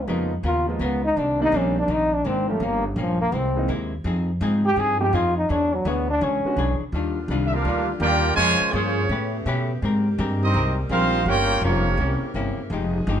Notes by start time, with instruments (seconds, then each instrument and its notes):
0.07 upright bass F2, hollow-body jazz guitar C#3 B3 F4 A#4, grand piano F3 G#3 A#3 B3 D#4
0.43 upright bass D#2, hollow-body jazz guitar C#3 B3 F4 A#4, trombone F4
0.68 grand piano F3 G#3 A#3 B3 F4, trombone G#3
0.79 upright bass C#2, hollow-body jazz guitar C#3 B3 F4 A#4, trombone B3
1.04 trombone D#4
1.16 upright bass C2, hollow-body jazz guitar C3 D#3 A#3 D4, trombone D4
1.40 grand piano D#3 G3 A#3 C4 D4, trombone D#4
1.52 upright bass A#1, hollow-body jazz guitar C3 D#3 A#3 D4
1.56 trombone C#4
1.79 trombone D4
1.88 upright bass A#1, hollow-body jazz guitar C3 D#3 A#3 D4
1.92 trombone D#4
2.14 trombone D4
2.25 upright bass G#1, hollow-body jazz guitar C3 D#3 A#3 D4, trombone C4
2.48 grand piano F3 G3 A#3 C#4 G4, trombone A3
2.60 upright bass G1, hollow-body jazz guitar G2 F3 A#3 C#4
2.64 trombone A#3
2.87 trombone C#3
2.96 upright bass A#1, hollow-body jazz guitar G2 F3 A#3 C#4, trombone F3
3.21 trombone A#3
3.32 upright bass C2, hollow-body jazz guitar C3 G#3 A#3 E4, trombone C4
3.56 grand piano E3 G#3 A#3 C4 D#4
3.68 upright bass D#2, hollow-body jazz guitar C3 G#3 A#3 E4
4.04 upright bass F2, hollow-body jazz guitar F3 C4 D#4 G#4
4.41 upright bass G#2, hollow-body jazz guitar F3 C4 D#4 G#4
4.66 trombone G4
4.76 upright bass G2, hollow-body jazz guitar F3 C4 D#4 G#4, trombone G#4
5.00 grand piano F3 G#3 C4 D#4 G4, trombone G4
5.13 upright bass F2, hollow-body jazz guitar F3 C4 D#4 G#4, trombone F4
5.38 trombone D#4
5.49 upright bass E2, hollow-body jazz guitar E3 D4 G#4 C#5, trombone D4
5.74 trombone F#3
5.85 upright bass D2, hollow-body jazz guitar E3 D4 G#4 C#5, trombone B3
6.10 trombone D4
6.21 upright bass C#2, hollow-body jazz guitar E3 D4 G#4 C#5, trombone C#4
6.44 grand piano D3 G#3 B3 C#4 F#4, muted upright bass stroke
6.57 upright bass B1, hollow-body jazz guitar E3 D4 G#4 C#5
6.80 muted upright bass stroke
6.92 upright bass D#2, saxophone section D3 G3 D4 F4, hollow-body jazz guitar D#3 G3 D4 F4
7.28 upright bass C2, hollow-body jazz guitar D#3 G3 D4 F4
7.47 trumpet section E5
7.52 trombone section A#3 D4 F4, trumpet section D4 G4 A#4 F5
7.65 upright bass D2, hollow-body jazz guitar D#3 G3 D4
7.69 hollow-body jazz guitar F4
8.00 upright bass D#2, hollow-body jazz guitar D#3 G3 D4 F4, trombone section A#3 D4 G4, trumpet section F4 A#4 D5 G5
8.35 upright bass F2, trombone section C#3 F3 G#3, saxophone section C#3 A#3 C#4, hollow-body jazz guitar A#3 C#4, trumpet section F4 C5 C#5 G#5
8.40 hollow-body jazz guitar G#4 C5
8.61 muted upright bass stroke
8.71 upright bass G2, trombone section F3 C#4 G#4, hollow-body jazz guitar A#3 C#4, trumpet section F4 G#4 C5 C#5
8.76 hollow-body jazz guitar G#4 C5
9.09 upright bass A2, saxophone section C#3 A3 B3 G4, hollow-body jazz guitar A3 C#4 G4 B4
9.46 upright bass B2, hollow-body jazz guitar A3 C#4 G4 B4
9.80 upright bass G#2, saxophone section C3 G3 A#3, hollow-body jazz guitar G#3 C4
9.84 hollow-body jazz guitar G4 A#4
10.18 upright bass G2, hollow-body jazz guitar G#3 C4 G4 A#4
10.42 trombone section G3 C4 D#4, trumpet section C4 G4 A#4 D#5
10.54 upright bass C2, hollow-body jazz guitar G#3 C4 G4 A#4
10.89 upright bass A#1, trombone section G3 C4 F4, hollow-body jazz guitar G#3 C4 G4 A#4, trumpet section D#4 A#4 C5 F5
11.26 upright bass G1, saxophone section C#3 G3 F4, hollow-body jazz guitar G3 C#4 F4, trombone section A#3 C#4 G4, trumpet section F4 A#4 C#5 G5
11.30 hollow-body jazz guitar A#4
11.61 upright bass F1, trombone section F3 A#3 C#4, hollow-body jazz guitar G3 C#4 F4 A#4, trumpet section A#3 F4 G4 C#5
11.97 upright bass C2, hollow-body jazz guitar C3 A#3 C#4, saxophone section C3 E4
12.02 hollow-body jazz guitar E4
12.21 muted upright bass stroke
12.34 upright bass G1, hollow-body jazz guitar C3 A#3 C#4 E4
12.57 muted upright bass stroke
12.70 upright bass F1, saxophone section F3 G#3 D#4 G#4, hollow-body jazz guitar F3 G#3 D#4 G4
13.07 upright bass G1, hollow-body jazz guitar F3 G#3 D#4 G4